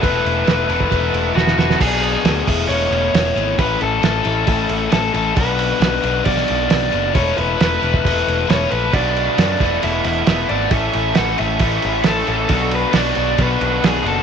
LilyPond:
<<
  \new Staff \with { instrumentName = "Overdriven electric guitar" } { \time 4/4 \key b \minor \tempo 4 = 135 b'2. fis'8 fis'8 | gis'2 cis''2 | b'8 a'8 a'2 a'8 a'8 | b'2 d''2 |
cis''8 b'8 b'2 cis''8 b'8 | d''2 e''8 e''4 d''8 | e''4 fis''8 e''4. a'8 a'8~ | a'8 b'8 d''4 b'4 gis'8 a'8 | }
  \new Staff \with { instrumentName = "Overdriven electric guitar" } { \time 4/4 \key b \minor <e b e' a'>4 <e b e' a'>8 <e b e' a'>8 <e b e' a'>4 <e b e' a'>8 <e b e' a'>8 | r1 | r1 | r1 |
r1 | <fis b d' fis'>4 <fis b d' fis'>8 <e b e' a'>8 <e b e' a'>4 <e b e' a'>8 <e b e' a'>8 | <e a cis' a'>4 <e a cis' a'>8 <e a cis' a'>8 <e a cis' a'>4 <e a cis' a'>8 <e a cis' a'>8 | <fis b d' fis'>4 <fis b d' fis'>8 <fis b d' fis'>8 <fis b d' fis'>4 <fis b d' fis'>8 <fis b d' fis'>8 | }
  \new Staff \with { instrumentName = "Overdriven electric guitar" } { \time 4/4 \key b \minor <e a e' a' b'>4 <e a e' a' b'>8 <e a e' a' b'>8 <e a e' a' b'>4 <e a e' a' b'>8 <e a e' a' b'>8 | <b, fis b d'>4 <b, fis b d'>8 <e a b e'>8 <e a b e'>4 <e a b e'>8 <e a b e'>8 | <a, e a cis' e'>4 <a, e a cis' e'>8 <a, e a cis' e'>8 <a, e a cis' e'>4 <a, e a cis' e'>8 <a, e a cis' e'>8 | <b, fis b d' fis'>4 <b, fis b d' fis'>8 <b, fis b d' fis'>8 <b, fis b d' fis'>4 <b, fis b d' fis'>8 <b, fis b d' fis'>8 |
<e a e' a' b'>4 <e a e' a' b'>8 <e a e' a' b'>8 <e a e' a' b'>4 <e a e' a' b'>8 <e a e' a' b'>8 | <b, fis b d' fis'>4 <b, fis b d' fis'>8 <e a b e'>8 <e a b e'>4 <e a b e'>8 <e a b e'>8 | <a, e a cis' e'>4 <a, e a cis' e'>8 <a, e a cis' e'>8 <a, e a cis' e'>4 <a, e a cis' e'>8 <a, e a cis' e'>8 | <b, fis b d' fis'>4 <b, fis b d' fis'>8 <b, fis b d' fis'>8 <b, fis b d' fis'>4 <b, fis b d' fis'>8 <b, fis b d' fis'>8 | }
  \new Staff \with { instrumentName = "Picked electric bass" } { \clef bass \time 4/4 \key b \minor e,,8 e,,8 e,,8 e,,8 e,,8 e,,8 e,,8 e,,8 | b,,4 d,8 e,,8 e,,8 e,,8 e,,8 gis,,8 | a,,8 a,,8 a,,8 a,,8 a,,8 a,,8 a,,8 a,,8 | b,,4 b,,8 b,,8 b,,8 b,,8 b,,8 fis,,8 |
e,,8 e,,8 e,,8 e,,8 e,,8 e,,8 e,,8 ais,,8 | b,,4 fis,8 e,,8 e,,8 e,,8 e,,8 gis,,8 | a,,8 a,,8 a,,8 a,,8 a,,8 a,,8 a,,8 a,,8 | b,,4 b,,8 b,,8 b,,8 b,,8 b,,8 fis,,8 | }
  \new DrumStaff \with { instrumentName = "Drums" } \drummode { \time 4/4 <cymc bd>8 cymc8 <cymc sn>8 cymc16 bd16 <cymc bd>8 cymc8 sn16 sn16 sn16 sn16 | <cymc bd>8 cymc8 <cymc sn>8 <cymc bd>8 cymc8 cymc8 <cymc sn>8 cymc8 | <cymc bd>8 cymc8 <cymc sn>8 cymc8 <cymc bd>8 cymc8 <cymc sn>8 cymc8 | <cymc bd>8 cymc8 <cymc sn>8 cymc8 <cymc bd>16 sn16 cymc8 <cymc sn>16 sn16 cymc8 |
<cymc bd>8 cymc8 <cymc sn>8 cymc16 bd16 <cymc bd>8 cymc8 <cymc sn>8 cymc8 | <cymc bd>8 cymc8 <cymc sn>8 <cymc bd>8 cymc8 cymc8 <cymc sn>8 cymc8 | <cymc bd>8 cymc8 <cymc sn>8 cymc8 <cymc bd>8 cymc8 <cymc sn>8 cymc8 | <cymc bd>8 cymc8 <cymc sn>8 cymc8 <cymc bd>8 cymc8 <cymc sn>16 sn16 cymc8 | }
>>